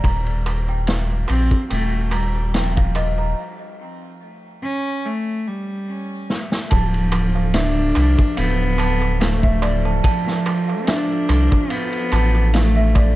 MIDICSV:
0, 0, Header, 1, 7, 480
1, 0, Start_track
1, 0, Tempo, 833333
1, 23, Time_signature, 4, 2, 24, 8
1, 7578, End_track
2, 0, Start_track
2, 0, Title_t, "Celesta"
2, 0, Program_c, 0, 8
2, 0, Control_c, 0, 64, 127
2, 23, Note_on_c, 0, 82, 98
2, 30, Control_c, 0, 64, 0
2, 98, Note_off_c, 0, 82, 0
2, 131, Control_c, 0, 64, 127
2, 397, Note_on_c, 0, 79, 77
2, 494, Note_off_c, 0, 79, 0
2, 505, Note_on_c, 0, 77, 75
2, 579, Note_off_c, 0, 77, 0
2, 982, Note_on_c, 0, 79, 77
2, 1212, Note_off_c, 0, 79, 0
2, 1223, Note_on_c, 0, 82, 72
2, 1452, Note_off_c, 0, 82, 0
2, 1463, Note_on_c, 0, 79, 84
2, 1538, Note_off_c, 0, 79, 0
2, 1593, Note_on_c, 0, 77, 96
2, 1692, Note_off_c, 0, 77, 0
2, 1703, Note_on_c, 0, 75, 96
2, 1828, Note_off_c, 0, 75, 0
2, 1834, Note_on_c, 0, 82, 73
2, 1896, Note_off_c, 0, 82, 0
2, 1951, Control_c, 0, 64, 0
2, 2053, Control_c, 0, 64, 127
2, 3862, Note_on_c, 0, 81, 101
2, 3870, Control_c, 0, 64, 0
2, 3938, Note_off_c, 0, 81, 0
2, 3968, Control_c, 0, 64, 127
2, 4234, Note_on_c, 0, 77, 75
2, 4332, Note_off_c, 0, 77, 0
2, 4344, Note_on_c, 0, 76, 74
2, 4419, Note_off_c, 0, 76, 0
2, 4820, Note_on_c, 0, 77, 77
2, 5051, Note_off_c, 0, 77, 0
2, 5062, Note_on_c, 0, 81, 72
2, 5292, Note_off_c, 0, 81, 0
2, 5303, Note_on_c, 0, 77, 79
2, 5378, Note_off_c, 0, 77, 0
2, 5432, Note_on_c, 0, 76, 92
2, 5531, Note_off_c, 0, 76, 0
2, 5540, Note_on_c, 0, 74, 101
2, 5667, Note_off_c, 0, 74, 0
2, 5675, Note_on_c, 0, 81, 76
2, 5737, Note_off_c, 0, 81, 0
2, 5780, Note_on_c, 0, 81, 99
2, 5857, Note_off_c, 0, 81, 0
2, 6151, Note_on_c, 0, 77, 73
2, 6250, Note_off_c, 0, 77, 0
2, 6260, Note_on_c, 0, 76, 80
2, 6337, Note_off_c, 0, 76, 0
2, 6739, Note_on_c, 0, 77, 76
2, 6970, Note_off_c, 0, 77, 0
2, 6980, Note_on_c, 0, 81, 71
2, 7211, Note_off_c, 0, 81, 0
2, 7220, Note_on_c, 0, 77, 81
2, 7297, Note_off_c, 0, 77, 0
2, 7352, Note_on_c, 0, 76, 93
2, 7451, Note_off_c, 0, 76, 0
2, 7460, Note_on_c, 0, 74, 97
2, 7578, Note_off_c, 0, 74, 0
2, 7578, End_track
3, 0, Start_track
3, 0, Title_t, "Ambient pad"
3, 0, Program_c, 1, 92
3, 3869, Note_on_c, 1, 62, 68
3, 3870, Note_on_c, 1, 53, 76
3, 3870, Note_on_c, 1, 69, 88
3, 5783, Note_on_c, 1, 65, 71
3, 7578, Note_off_c, 1, 53, 0
3, 7578, Note_off_c, 1, 62, 0
3, 7578, Note_off_c, 1, 65, 0
3, 7578, Note_off_c, 1, 69, 0
3, 7578, End_track
4, 0, Start_track
4, 0, Title_t, "Cello"
4, 0, Program_c, 2, 42
4, 744, Note_on_c, 2, 60, 113
4, 967, Note_off_c, 2, 60, 0
4, 985, Note_on_c, 2, 57, 95
4, 1227, Note_on_c, 2, 55, 92
4, 1236, Note_off_c, 2, 57, 0
4, 1471, Note_on_c, 2, 53, 84
4, 1480, Note_off_c, 2, 55, 0
4, 1839, Note_off_c, 2, 53, 0
4, 2665, Note_on_c, 2, 61, 111
4, 2912, Note_on_c, 2, 57, 100
4, 2921, Note_off_c, 2, 61, 0
4, 3151, Note_on_c, 2, 55, 86
4, 3159, Note_off_c, 2, 57, 0
4, 3627, Note_off_c, 2, 55, 0
4, 3865, Note_on_c, 2, 53, 101
4, 4345, Note_on_c, 2, 62, 110
4, 4353, Note_off_c, 2, 53, 0
4, 4821, Note_on_c, 2, 59, 107
4, 4830, Note_off_c, 2, 62, 0
4, 5303, Note_on_c, 2, 57, 100
4, 5311, Note_off_c, 2, 59, 0
4, 5675, Note_off_c, 2, 57, 0
4, 5784, Note_on_c, 2, 53, 98
4, 6261, Note_on_c, 2, 62, 107
4, 6269, Note_off_c, 2, 53, 0
4, 6743, Note_on_c, 2, 59, 105
4, 6751, Note_off_c, 2, 62, 0
4, 7220, Note_on_c, 2, 57, 101
4, 7229, Note_off_c, 2, 59, 0
4, 7578, Note_off_c, 2, 57, 0
4, 7578, End_track
5, 0, Start_track
5, 0, Title_t, "Analog synth bass"
5, 0, Program_c, 3, 38
5, 24, Note_on_c, 3, 27, 95
5, 723, Note_off_c, 3, 27, 0
5, 748, Note_on_c, 3, 34, 76
5, 861, Note_off_c, 3, 34, 0
5, 987, Note_on_c, 3, 27, 93
5, 1924, Note_off_c, 3, 27, 0
5, 3872, Note_on_c, 3, 26, 103
5, 4567, Note_off_c, 3, 26, 0
5, 4589, Note_on_c, 3, 36, 77
5, 4702, Note_off_c, 3, 36, 0
5, 4828, Note_on_c, 3, 26, 93
5, 5765, Note_off_c, 3, 26, 0
5, 6506, Note_on_c, 3, 36, 75
5, 6620, Note_off_c, 3, 36, 0
5, 6984, Note_on_c, 3, 33, 82
5, 7578, Note_off_c, 3, 33, 0
5, 7578, End_track
6, 0, Start_track
6, 0, Title_t, "Darbuka"
6, 25, Note_on_c, 9, 63, 47
6, 83, Note_off_c, 9, 63, 0
6, 266, Note_on_c, 9, 63, 84
6, 324, Note_off_c, 9, 63, 0
6, 394, Note_on_c, 9, 63, 35
6, 452, Note_off_c, 9, 63, 0
6, 505, Note_on_c, 9, 63, 47
6, 562, Note_off_c, 9, 63, 0
6, 634, Note_on_c, 9, 63, 30
6, 692, Note_off_c, 9, 63, 0
6, 737, Note_on_c, 9, 63, 80
6, 794, Note_off_c, 9, 63, 0
6, 873, Note_on_c, 9, 63, 34
6, 931, Note_off_c, 9, 63, 0
6, 982, Note_on_c, 9, 63, 54
6, 1040, Note_off_c, 9, 63, 0
6, 1217, Note_on_c, 9, 63, 83
6, 1275, Note_off_c, 9, 63, 0
6, 1357, Note_on_c, 9, 63, 35
6, 1415, Note_off_c, 9, 63, 0
6, 1463, Note_on_c, 9, 63, 45
6, 1521, Note_off_c, 9, 63, 0
6, 1596, Note_on_c, 9, 63, 34
6, 1654, Note_off_c, 9, 63, 0
6, 1702, Note_on_c, 9, 63, 76
6, 1760, Note_off_c, 9, 63, 0
6, 1832, Note_on_c, 9, 63, 38
6, 1889, Note_off_c, 9, 63, 0
6, 3865, Note_on_c, 9, 63, 39
6, 3923, Note_off_c, 9, 63, 0
6, 4102, Note_on_c, 9, 63, 97
6, 4159, Note_off_c, 9, 63, 0
6, 4238, Note_on_c, 9, 63, 44
6, 4295, Note_off_c, 9, 63, 0
6, 4347, Note_on_c, 9, 63, 40
6, 4404, Note_off_c, 9, 63, 0
6, 4580, Note_on_c, 9, 63, 89
6, 4638, Note_off_c, 9, 63, 0
6, 4713, Note_on_c, 9, 63, 49
6, 4771, Note_off_c, 9, 63, 0
6, 4823, Note_on_c, 9, 63, 41
6, 4881, Note_off_c, 9, 63, 0
6, 5058, Note_on_c, 9, 63, 76
6, 5116, Note_off_c, 9, 63, 0
6, 5194, Note_on_c, 9, 63, 51
6, 5251, Note_off_c, 9, 63, 0
6, 5302, Note_on_c, 9, 63, 36
6, 5360, Note_off_c, 9, 63, 0
6, 5542, Note_on_c, 9, 63, 95
6, 5600, Note_off_c, 9, 63, 0
6, 5675, Note_on_c, 9, 63, 47
6, 5733, Note_off_c, 9, 63, 0
6, 5787, Note_on_c, 9, 63, 36
6, 5845, Note_off_c, 9, 63, 0
6, 6026, Note_on_c, 9, 63, 100
6, 6084, Note_off_c, 9, 63, 0
6, 6160, Note_on_c, 9, 63, 50
6, 6218, Note_off_c, 9, 63, 0
6, 6265, Note_on_c, 9, 63, 45
6, 6323, Note_off_c, 9, 63, 0
6, 6503, Note_on_c, 9, 63, 94
6, 6561, Note_off_c, 9, 63, 0
6, 6633, Note_on_c, 9, 63, 57
6, 6691, Note_off_c, 9, 63, 0
6, 6740, Note_on_c, 9, 63, 40
6, 6798, Note_off_c, 9, 63, 0
6, 6984, Note_on_c, 9, 63, 92
6, 7042, Note_off_c, 9, 63, 0
6, 7112, Note_on_c, 9, 63, 53
6, 7169, Note_off_c, 9, 63, 0
6, 7225, Note_on_c, 9, 63, 37
6, 7282, Note_off_c, 9, 63, 0
6, 7461, Note_on_c, 9, 63, 82
6, 7518, Note_off_c, 9, 63, 0
6, 7578, End_track
7, 0, Start_track
7, 0, Title_t, "Drums"
7, 23, Note_on_c, 9, 36, 107
7, 24, Note_on_c, 9, 51, 78
7, 80, Note_off_c, 9, 36, 0
7, 82, Note_off_c, 9, 51, 0
7, 152, Note_on_c, 9, 51, 39
7, 210, Note_off_c, 9, 51, 0
7, 265, Note_on_c, 9, 51, 58
7, 322, Note_off_c, 9, 51, 0
7, 501, Note_on_c, 9, 51, 79
7, 510, Note_on_c, 9, 38, 122
7, 559, Note_off_c, 9, 51, 0
7, 567, Note_off_c, 9, 38, 0
7, 744, Note_on_c, 9, 51, 59
7, 802, Note_off_c, 9, 51, 0
7, 872, Note_on_c, 9, 36, 89
7, 929, Note_off_c, 9, 36, 0
7, 982, Note_on_c, 9, 51, 92
7, 1040, Note_off_c, 9, 51, 0
7, 1219, Note_on_c, 9, 51, 68
7, 1276, Note_off_c, 9, 51, 0
7, 1463, Note_on_c, 9, 51, 77
7, 1466, Note_on_c, 9, 38, 98
7, 1521, Note_off_c, 9, 51, 0
7, 1524, Note_off_c, 9, 38, 0
7, 1598, Note_on_c, 9, 36, 89
7, 1655, Note_off_c, 9, 36, 0
7, 1698, Note_on_c, 9, 51, 62
7, 1755, Note_off_c, 9, 51, 0
7, 3629, Note_on_c, 9, 38, 60
7, 3686, Note_off_c, 9, 38, 0
7, 3755, Note_on_c, 9, 38, 66
7, 3813, Note_off_c, 9, 38, 0
7, 3863, Note_on_c, 9, 51, 88
7, 3870, Note_on_c, 9, 36, 104
7, 3921, Note_off_c, 9, 51, 0
7, 3927, Note_off_c, 9, 36, 0
7, 3997, Note_on_c, 9, 51, 41
7, 4055, Note_off_c, 9, 51, 0
7, 4098, Note_on_c, 9, 51, 65
7, 4156, Note_off_c, 9, 51, 0
7, 4342, Note_on_c, 9, 51, 90
7, 4345, Note_on_c, 9, 38, 109
7, 4399, Note_off_c, 9, 51, 0
7, 4402, Note_off_c, 9, 38, 0
7, 4584, Note_on_c, 9, 51, 76
7, 4642, Note_off_c, 9, 51, 0
7, 4716, Note_on_c, 9, 36, 100
7, 4773, Note_off_c, 9, 36, 0
7, 4821, Note_on_c, 9, 51, 91
7, 4879, Note_off_c, 9, 51, 0
7, 5066, Note_on_c, 9, 51, 61
7, 5123, Note_off_c, 9, 51, 0
7, 5306, Note_on_c, 9, 51, 82
7, 5309, Note_on_c, 9, 38, 95
7, 5363, Note_off_c, 9, 51, 0
7, 5367, Note_off_c, 9, 38, 0
7, 5434, Note_on_c, 9, 36, 89
7, 5491, Note_off_c, 9, 36, 0
7, 5544, Note_on_c, 9, 51, 59
7, 5602, Note_off_c, 9, 51, 0
7, 5784, Note_on_c, 9, 36, 105
7, 5786, Note_on_c, 9, 51, 81
7, 5842, Note_off_c, 9, 36, 0
7, 5844, Note_off_c, 9, 51, 0
7, 5918, Note_on_c, 9, 38, 47
7, 5976, Note_off_c, 9, 38, 0
7, 6023, Note_on_c, 9, 51, 57
7, 6080, Note_off_c, 9, 51, 0
7, 6262, Note_on_c, 9, 51, 81
7, 6268, Note_on_c, 9, 38, 118
7, 6320, Note_off_c, 9, 51, 0
7, 6325, Note_off_c, 9, 38, 0
7, 6504, Note_on_c, 9, 51, 78
7, 6561, Note_off_c, 9, 51, 0
7, 6636, Note_on_c, 9, 36, 94
7, 6693, Note_off_c, 9, 36, 0
7, 6740, Note_on_c, 9, 51, 85
7, 6797, Note_off_c, 9, 51, 0
7, 6870, Note_on_c, 9, 51, 48
7, 6927, Note_off_c, 9, 51, 0
7, 6978, Note_on_c, 9, 51, 67
7, 7036, Note_off_c, 9, 51, 0
7, 7220, Note_on_c, 9, 51, 81
7, 7228, Note_on_c, 9, 38, 105
7, 7278, Note_off_c, 9, 51, 0
7, 7285, Note_off_c, 9, 38, 0
7, 7462, Note_on_c, 9, 51, 62
7, 7463, Note_on_c, 9, 36, 96
7, 7520, Note_off_c, 9, 51, 0
7, 7521, Note_off_c, 9, 36, 0
7, 7578, End_track
0, 0, End_of_file